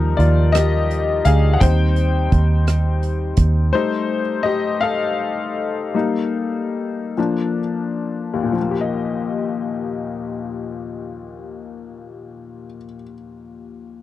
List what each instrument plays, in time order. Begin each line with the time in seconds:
Already playing: fingered electric bass D#2, upright piano F3 G3 D#4 A#4
0.17 fingered electric bass D#2, upright piano F4 D5, closed hi-hat
0.52 upright piano G4 D#5, cross-stick, closed hi-hat
0.91 closed hi-hat
1.25 fingered electric bass D2, upright piano G#4 F5, closed hi-hat
1.53 upright piano F#5
1.60 fingered electric bass D#2, upright piano G3 C4 D#4 C5 G5, kick, closed hi-hat
1.96 closed hi-hat
2.32 fingered electric bass D#2, kick, closed hi-hat
2.67 cross-stick, closed hi-hat
3.03 closed hi-hat
3.37 fingered electric bass D#2, kick, closed hi-hat
3.73 upright piano G3 A3 D#4 C5
4.43 upright piano G4 D#5
4.81 upright piano A4 F5
5.94 upright piano G3 A#3 D#4
7.17 upright piano F3 A#3 D4
8.33 upright piano D#2
8.43 upright piano A#2
8.52 upright piano F3
8.62 upright piano A#3
8.71 upright piano G4
8.81 upright piano D#5